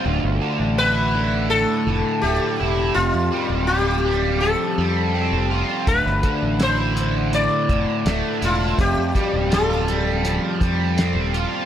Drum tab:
HH |----------------|----------------|x-x-x-x-x-x-x-x-|x-x-x-x-x-x-x-x-|
SD |----------------|----------------|-o--o-------o---|----o-------o---|
BD |----------------|----------------|o-o-------o-----|o-o-------o-----|